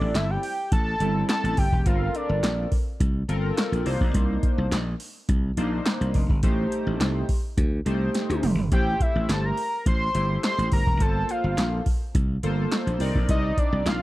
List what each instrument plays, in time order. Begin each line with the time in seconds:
Already playing: analog polysynth G3 C4 E4 A4, analog synth lead D5
0.01 slap bass A1
0.14 slap bass G1, analog synth lead E5, snare, clap, closed hi-hat
0.30 analog synth lead G5
0.43 open hi-hat
0.72 slap bass A1, analog synth lead A5, kick, closed hi-hat
1.00 slap bass G1, analog polysynth G3 C4 E4 A4, closed hi-hat
1.29 analog synth lead A5, snare, clap, closed hi-hat
1.44 slap bass A1, closed hi-hat
1.57 slap bass G1, analog synth lead G5, kick, open hi-hat
1.72 slap bass E1, kick
1.86 slap bass G1, analog polysynth C4 F4 A4 A#4, analog synth lead F5, kick, closed hi-hat
2.15 analog synth lead D5, closed hi-hat
2.29 slap bass G1
2.43 slap bass A#1, snare, clap, closed hi-hat
2.72 kick, open hi-hat
3.00 slap bass C2, kick, closed hi-hat
3.28 slap bass G1, analog polysynth C4 F4 A4 A#4, closed hi-hat
3.57 snare, clap, closed hi-hat
3.72 slap bass A#1, closed hi-hat
3.85 slap bass C2, analog polysynth A#3 D4 D#4 C5, open hi-hat
4.01 slap bass A#1, kick
4.14 slap bass C2, kick, closed hi-hat
4.43 kick, closed hi-hat
4.58 slap bass C2
4.72 slap bass A#1, snare, clap, closed hi-hat
5.00 open hi-hat
5.29 slap bass C2, kick, closed hi-hat
5.57 slap bass A#1, analog polysynth A#3 D4 D#4 C5, closed hi-hat
5.86 snare, clap, closed hi-hat
6.01 slap bass C2, closed hi-hat
6.14 slap bass F1, kick, open hi-hat
6.29 slap bass G1, kick
6.43 slap bass A1, analog polysynth A3 D#4 G4 C5, kick, closed hi-hat
6.72 closed hi-hat
6.87 slap bass A1
7.00 slap bass C2, snare, clap, closed hi-hat
7.29 kick, open hi-hat
7.57 slap bass D2, kick, closed hi-hat
7.85 slap bass C2, analog polysynth A3 D#4 G4 C5, closed hi-hat
8.14 snare, closed hi-hat
8.30 slap bass D2, closed hi-hat, high tom
8.43 slap bass F1, mid tom, open hi-hat
8.58 slap bass G1, floor tom
8.71 slap bass A1, analog polysynth A3 E4 G4 C5, analog synth lead G5, kick, closed hi-hat
9.00 analog synth lead E5, kick, closed hi-hat
9.15 slap bass A1
9.29 slap bass G1, analog synth lead A5, snare, clap, closed hi-hat
9.45 analog synth lead A#5
9.57 open hi-hat
9.86 slap bass A1, analog synth lead C6, kick, closed hi-hat
10.14 slap bass G1, analog polysynth A3 E4 G4 C5, closed hi-hat
10.43 analog synth lead C6, snare, clap, closed hi-hat
10.58 slap bass A1, closed hi-hat
10.72 slap bass G1, analog synth lead A#5, kick, open hi-hat
10.87 slap bass E1, kick
11.00 slap bass G1, analog polysynth A#3 F4 A4 C5, analog synth lead A5, kick, closed hi-hat
11.29 analog synth lead F5, closed hi-hat
11.44 slap bass G1
11.58 slap bass A#1, snare, clap, closed hi-hat
11.86 kick, open hi-hat
12.15 slap bass C2, kick, closed hi-hat
12.43 slap bass G1, analog polysynth A#3 F4 A4 C5, closed hi-hat
12.72 snare, clap, closed hi-hat
12.87 slap bass A#1, closed hi-hat
13.00 slap bass C2, analog polysynth C4 D#4 A#4 D5, open hi-hat
13.15 slap bass A#1, kick
13.29 slap bass C2, analog synth lead D#5, kick, closed hi-hat
13.57 analog synth lead D5, kick, closed hi-hat
13.72 slap bass C2
13.86 slap bass A#1, analog synth lead F5, snare, clap, closed hi-hat